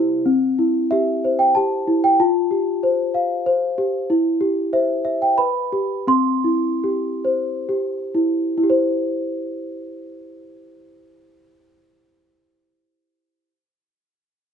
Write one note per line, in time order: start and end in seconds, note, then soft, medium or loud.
0.00 0.24 C3 medium
0.00 0.24 G3 medium
0.00 0.24 E4 medium
0.00 0.26 E4 medium
0.00 0.26 G4 medium
0.00 0.26 C5 medium
0.26 1.55 C4 medium
0.59 1.86 E4 medium
0.91 1.56 G4 medium
0.91 1.41 E5 medium
1.24 2.19 C5 medium
1.39 1.54 G5 medium
1.55 2.19 G4 medium
1.55 1.99 A5 medium
1.88 2.19 E4 medium
2.04 2.20 G5 medium
2.20 3.47 F4 medium
2.20 3.74 A5 medium
2.51 3.77 G4 medium
2.83 3.45 C5 medium
3.14 4.09 F5 medium
3.46 4.09 C5 medium
3.78 4.09 G4 medium
4.10 5.39 E4 medium
4.41 5.38 G4 medium
4.73 5.39 C5 medium
4.73 5.03 E5 medium
5.05 5.38 E5 medium
5.22 5.39 G5 medium
5.38 6.08 B4 medium
5.38 6.04 B5 medium
5.73 6.08 G4 medium
6.07 7.68 C4 medium
6.07 7.64 C6 medium
6.44 8.13 E4 medium
6.84 7.68 G4 medium
7.25 8.63 C5 medium
7.69 8.62 G4 medium
8.15 8.56 E4 medium
8.58 13.49 E4 medium
8.63 13.55 G4 medium
8.70 13.61 C5 medium